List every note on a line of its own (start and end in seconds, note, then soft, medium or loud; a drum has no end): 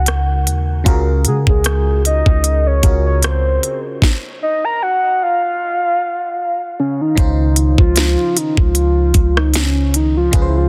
0.00 0.48 C#2 loud
0.00 0.81 C#3 medium
0.00 0.82 G#3 medium
0.00 0.82 D#4 medium
0.00 0.83 F#4 medium
0.00 0.83 A#4 medium
0.00 0.47 F#5 loud
0.06 cross-stick loud
0.06 closed hi-hat medium
0.46 0.84 D#2 loud
0.46 closed hi-hat medium
0.84 1.27 C#2 loud
0.84 2.78 C#3 medium
0.84 2.79 C#4 medium
0.84 2.79 F4 medium
0.84 2.80 F#4 medium
0.84 2.80 G#4 medium
0.84 kick loud
0.84 closed hi-hat medium
0.88 2.80 A#4 medium
1.25 1.46 C#3 medium
1.25 1.37 G#4 medium
1.25 closed hi-hat medium
1.47 2.23 C#2 medium
1.47 2.01 G#4 loud
1.47 kick medium
1.64 cross-stick loud
1.64 closed hi-hat medium
2.05 2.68 D#5 loud
2.05 closed hi-hat medium
2.26 2.81 C#2 loud
2.26 kick medium
2.44 closed hi-hat medium
2.67 3.05 C#5 medium
2.82 3.59 C#2 loud
2.82 4.01 C#3 soft
2.82 4.01 C#4 soft
2.82 4.02 F4 soft
2.82 4.02 F#4 soft
2.82 4.02 G#4 soft
2.82 4.02 A#4 medium
2.82 kick medium
2.82 closed hi-hat medium
3.06 3.22 C#5 medium
3.23 3.80 C5 medium
3.23 cross-stick loud
3.23 closed hi-hat medium
3.63 closed hi-hat medium
4.02 kick loud
4.02 snare medium
4.43 4.66 D#5 medium
4.64 4.84 A#5 loud
4.82 5.24 F#5 medium
5.23 6.79 F5 medium
6.80 7.03 C#4 medium
7.01 7.79 D#4 medium
7.15 7.76 C#2 loud
7.15 10.28 C#3 medium
7.15 10.29 C#4 medium
7.15 10.29 D#4 medium
7.15 10.30 F4 medium
7.15 10.30 C5 medium
7.15 kick loud
7.15 closed hi-hat medium
7.56 closed hi-hat medium
7.78 8.16 C#2 loud
7.78 8.39 F4 loud
7.78 kick loud
7.96 snare loud
7.96 closed hi-hat medium
8.37 8.58 D#4 loud
8.37 closed hi-hat medium
8.57 9.13 C#2 loud
8.57 9.39 F4 loud
8.57 kick loud
8.75 closed hi-hat medium
9.14 10.29 C#2 loud
9.14 kick medium
9.14 closed hi-hat medium
9.37 9.55 D#4 loud
9.37 cross-stick loud
9.54 9.97 C#4 loud
9.54 snare loud
9.54 closed hi-hat medium
9.94 10.16 D#4 loud
9.94 closed hi-hat medium
10.17 10.46 F4 loud
10.31 10.69 C#2 loud
10.31 10.69 C#3 medium
10.31 10.69 C#4 medium
10.31 10.69 F4 medium
10.31 10.69 G#4 medium
10.31 kick loud
10.31 closed hi-hat medium
10.35 10.41 B4 medium
10.42 10.69 C5 medium
10.48 10.59 E4 medium
10.57 10.69 F4 loud